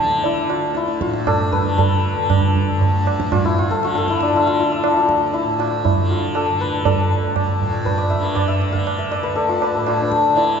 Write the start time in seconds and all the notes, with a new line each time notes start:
Already playing: D2 A2 D3 D4 E4 A4 B4
0.11 tabla te
0.24 E4, tabla tin
0.50 D2 F4, tabla na
0.75 E4, tabla te
0.88 tabla te
1.01 F4, tabla ke
1.05 A2
1.14 tabla te
1.27 A4, tabla na, tabla ge
1.52 B4, tabla ge
1.61 D3
1.78 A4, tabla tin, tabla ge
2.15 D3
2.30 tabla na, tabla ge
2.56 tabla ge
2.70 D2
2.81 tabla tin, tabla ge
3.07 tabla na
3.20 tabla ke
3.25 A2
3.32 F4, tabla na, tabla ge
3.45 E4
3.58 F4
3.71 A4
3.80 D3, tabla te
3.84 F4
3.95 A4, tabla te
4.08 E4, tabla ke
4.21 D4, tabla te
4.33 D3 E4, tabla tin
4.47 F4
4.59 E4
4.72 D4
4.84 E4, tabla na
4.90 D2
4.97 F4
5.09 tabla ke
5.34 E4, tabla tin
5.45 A2
5.59 F4, tabla na
5.84 E4, tabla tin, tabla ge
5.98 D3
6.11 F4
6.35 A4, tabla na
6.52 D3
6.61 B4
6.85 A4, tabla tin, tabla ge
7.06 D2
7.36 tabla na, tabla ge
7.60 A2, tabla ge
7.85 B4, tabla tin, tabla ge
7.98 D5
8.10 E5
8.14 D3
8.23 F5
8.35 D5, tabla na, tabla ge
8.48 E5
8.62 tabla te
8.68 D3
8.72 F5, tabla ge
8.87 tabla na
8.98 E5
9.11 D5, tabla na
9.23 D2 B4
9.36 A4, tabla tin
9.49 F4
9.58 D5, tabla na
9.63 B4
9.75 A2 A4
9.87 F4, tabla na
10.01 D4
10.12 tabla ke
10.30 D3
10.37 E4, tabla tin